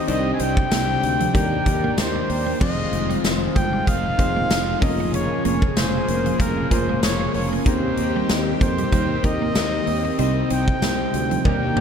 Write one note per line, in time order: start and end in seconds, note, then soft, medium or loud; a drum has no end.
0.00 0.10 C4 medium
0.00 1.31 C4 medium
0.00 0.08 D#4 medium
0.00 1.36 D#4 medium
0.00 0.10 A#4 medium
0.08 0.31 C2 loud
0.08 0.69 C3 medium
0.08 1.33 C3 medium
0.08 0.99 C3 medium
0.08 0.71 G3 medium
0.08 0.72 C4 medium
0.08 1.20 D4 medium
0.08 0.23 D4 medium
0.08 1.20 D#4 medium
0.08 1.33 G4 medium
0.08 1.21 G4 medium
0.08 1.21 C5 medium
0.08 0.33 D#5 loud
0.08 closed hi-hat medium
0.34 0.42 G#5 medium
0.39 0.63 C2 medium
0.39 0.54 C4 medium
0.39 1.35 G5 loud
0.39 closed hi-hat medium
0.57 muted clean electric guitar stroke soft
0.57 kick loud
0.70 0.95 C2 loud
0.70 1.34 C3 medium
0.70 1.33 G3 medium
0.70 0.86 A#3 medium
0.70 1.35 C4 medium
0.70 snare loud
0.70 closed hi-hat loud
0.70 tambourine medium
0.89 muted clean electric guitar stroke soft
1.03 1.26 D2 medium
1.03 closed hi-hat medium
1.20 1.32 F3 medium
1.20 closed hi-hat medium
1.34 1.57 D#2 loud
1.34 1.96 D#3 medium
1.34 2.60 D#3 medium
1.34 2.25 D#3 medium
1.34 1.49 G3 medium
1.34 1.97 A#3 medium
1.34 1.62 D4 medium
1.34 1.63 D#4 medium
1.34 1.99 D#4 medium
1.34 2.59 G4 medium
1.34 1.63 G4 medium
1.34 1.63 A#4 medium
1.34 2.59 D5 medium
1.34 1.95 G5 medium
1.34 kick medium
1.34 closed hi-hat medium
1.53 muted clean electric guitar stroke soft
1.66 1.89 D#2 loud
1.66 2.50 D4 medium
1.66 2.50 D#4 medium
1.66 2.51 G4 medium
1.66 2.51 A#4 medium
1.66 kick medium
1.66 closed hi-hat medium
1.84 1.96 A#3 medium
1.96 2.21 D#2 medium
1.96 2.59 D#3 medium
1.96 2.61 A#3 medium
1.96 2.62 D#4 medium
1.96 2.57 C5 medium
1.96 snare loud
1.96 closed hi-hat loud
1.96 tambourine medium
2.16 2.27 C4 medium
2.29 2.52 D#2 loud
2.29 muted clean electric guitar stroke soft
2.29 open hi-hat medium
2.46 2.58 A#3 medium
2.59 2.84 F1 loud
2.59 4.80 D#3 medium
2.59 3.85 F3 medium
2.59 2.75 F3 medium
2.59 4.80 G#3 medium
2.59 3.73 C4 medium
2.59 3.87 C4 medium
2.59 3.73 D#4 medium
2.59 4.80 F4 medium
2.59 3.73 F4 medium
2.59 3.73 G#4 medium
2.59 3.74 C5 medium
2.59 3.20 D#5 loud
2.59 kick loud
2.59 crash loud
2.65 3.89 F4 medium
2.92 3.15 F1 loud
2.92 muted clean electric guitar stroke soft
2.92 closed hi-hat medium
3.10 3.21 G3 medium
3.10 closed hi-hat medium
3.24 3.47 F1 loud
3.24 muted clean electric guitar stroke soft
3.24 snare loud
3.24 closed hi-hat medium
3.24 tambourine medium
3.56 3.79 G1 medium
3.56 3.70 G#3 medium
3.56 3.89 G5 loud
3.56 kick loud
3.56 closed hi-hat medium
3.73 3.85 G3 medium
3.86 4.10 F1 loud
3.86 4.49 F3 medium
3.86 4.02 G#3 medium
3.86 4.50 C4 medium
3.86 4.52 F4 medium
3.86 4.84 F5 loud
3.86 kick medium
3.86 closed hi-hat medium
4.05 muted clean electric guitar stroke soft
4.18 4.42 F1 loud
4.18 4.82 C4 medium
4.18 4.82 D#4 medium
4.18 4.80 F4 medium
4.18 4.81 G#4 medium
4.18 4.82 C5 medium
4.18 kick medium
4.18 closed hi-hat medium
4.37 4.48 A#3 medium
4.49 4.73 F1 medium
4.49 4.81 F3 medium
4.49 4.65 C4 medium
4.49 4.79 C4 medium
4.49 4.83 F4 medium
4.49 snare loud
4.49 closed hi-hat loud
4.49 tambourine medium
4.80 5.28 F1 medium
4.80 7.63 C#3 medium
4.80 6.39 F3 medium
4.80 6.41 A#3 medium
4.80 5.94 A#3 medium
4.80 7.63 A#3 medium
4.80 5.94 C#4 medium
4.80 5.94 F4 medium
4.80 7.63 G#4 loud
4.80 5.94 G#4 medium
4.80 5.94 A#4 medium
4.80 5.14 D#5 loud
4.80 muted clean electric guitar stroke soft
4.80 kick loud
4.80 open hi-hat medium
4.85 6.37 A#2 medium
5.00 5.11 D#4 medium
5.14 5.28 C#4 medium
5.14 5.43 C#5 loud
5.14 closed hi-hat loud
5.45 5.68 F1 loud
5.45 5.59 A#3 medium
5.45 5.78 C#5 loud
5.45 closed hi-hat medium
5.62 muted clean electric guitar stroke soft
5.62 kick loud
5.77 6.00 F1 medium
5.77 5.91 G#3 medium
5.77 6.40 C5 loud
5.77 snare loud
5.77 closed hi-hat loud
5.77 tambourine medium
5.94 muted clean electric guitar stroke soft
6.08 6.31 F1 medium
6.08 closed hi-hat medium
6.26 6.38 F3 medium
6.26 closed hi-hat medium
6.38 6.62 F1 loud
6.38 7.01 A#2 medium
6.38 7.03 F3 medium
6.38 6.55 G3 medium
6.38 7.05 A#3 medium
6.38 6.73 A#4 loud
6.38 kick medium
6.38 closed hi-hat medium
6.58 muted clean electric guitar stroke soft
6.71 6.94 F1 loud
6.71 7.55 A#3 medium
6.71 7.56 C#4 medium
6.71 7.56 F4 medium
6.71 7.56 G#4 medium
6.71 7.56 A#4 medium
6.71 7.03 C5 loud
6.71 kick medium
6.71 closed hi-hat medium
6.89 7.01 G#3 medium
7.02 7.26 F1 loud
7.02 7.66 A#2 medium
7.02 7.64 F3 medium
7.02 7.67 A#3 medium
7.02 7.33 C#5 medium
7.02 snare loud
7.02 closed hi-hat loud
7.02 tambourine medium
7.21 7.32 C4 medium
7.34 7.58 F1 loud
7.34 7.49 C#5 medium
7.34 muted clean electric guitar stroke soft
7.34 open hi-hat medium
7.53 7.64 A#3 medium
7.64 7.89 D#2 loud
7.64 8.91 D#3 medium
7.64 10.16 D#3 medium
7.64 8.57 D#3 medium
7.64 8.78 A#3 medium
7.64 8.92 A#3 medium
7.64 8.78 C4 medium
7.64 11.42 C4 medium
7.64 8.78 D#4 medium
7.64 7.81 D#4 medium
7.64 10.17 G4 medium
7.64 8.79 G4 medium
7.64 8.79 A#4 medium
7.64 8.31 C5 loud
7.64 kick loud
7.64 closed hi-hat loud
7.70 8.94 D#4 loud
7.97 8.21 D#2 loud
7.97 muted clean electric guitar stroke soft
7.97 closed hi-hat medium
8.16 8.27 G3 medium
8.29 8.53 D#2 loud
8.29 muted clean electric guitar stroke medium
8.29 snare loud
8.29 closed hi-hat loud
8.29 tambourine medium
8.61 8.84 F2 medium
8.61 8.75 A#3 medium
8.61 9.27 C5 loud
8.61 kick loud
8.61 closed hi-hat medium
8.78 8.90 G3 medium
8.78 closed hi-hat medium
8.91 9.15 D#2 loud
8.91 9.54 D#3 medium
8.91 9.07 G3 medium
8.91 9.56 A#3 medium
8.91 9.58 D#4 medium
8.91 kick medium
8.91 closed hi-hat medium
9.10 muted clean electric guitar stroke soft
9.23 9.47 D#2 loud
9.23 10.08 A#3 medium
9.23 10.08 C4 medium
9.23 10.08 D#4 medium
9.23 10.08 G4 medium
9.23 10.09 A#4 medium
9.23 10.20 D#5 loud
9.23 kick medium
9.23 closed hi-hat medium
9.42 9.53 A#3 medium
9.55 9.79 D#2 loud
9.55 10.20 D#3 medium
9.55 10.19 A#3 medium
9.55 9.70 C4 medium
9.55 11.47 D#4 medium
9.55 snare loud
9.55 closed hi-hat loud
9.55 tambourine medium
9.87 10.10 D#2 loud
9.87 muted clean electric guitar stroke soft
9.87 open hi-hat medium
10.05 10.16 D#4 medium
10.18 10.42 C2 loud
10.18 11.45 C3 medium
10.18 11.10 C3 medium
10.18 11.44 C3 medium
10.18 11.44 G3 medium
10.18 11.31 C4 medium
10.18 10.33 D4 medium
10.18 11.44 D#4 medium
10.18 11.31 D#4 medium
10.18 11.31 G4 medium
10.18 11.32 C5 medium
10.18 10.49 D#5 loud
10.18 closed hi-hat medium
10.23 11.46 C4 medium
10.50 10.74 C2 loud
10.50 10.65 C4 medium
10.50 11.42 G5 loud
10.50 closed hi-hat medium
10.68 muted clean electric guitar stroke soft
10.68 kick loud
10.82 11.05 C2 loud
10.82 10.97 A#3 medium
10.82 snare loud
10.82 closed hi-hat loud
10.82 tambourine medium
11.00 muted clean electric guitar stroke soft
11.14 11.37 D2 medium
11.14 closed hi-hat medium
11.31 11.43 F3 medium
11.31 closed hi-hat medium
11.44 11.68 D#2 loud
11.44 11.80 D#3 medium
11.44 11.60 G3 medium
11.44 11.73 A#3 medium
11.44 11.80 A#3 medium
11.44 11.73 D4 medium
11.44 11.73 D#4 medium
11.44 11.80 D#4 medium
11.44 11.80 G4 medium
11.44 11.73 G4 medium
11.44 11.74 A#4 medium
11.44 11.80 D5 medium
11.44 11.80 G5 medium
11.44 kick medium
11.44 high tom medium
11.63 muted clean electric guitar stroke soft
11.76 11.80 D#2 loud
11.76 11.80 A#3 medium
11.76 11.80 D4 medium
11.76 11.80 D#4 medium
11.76 11.80 G4 medium
11.76 mid tom medium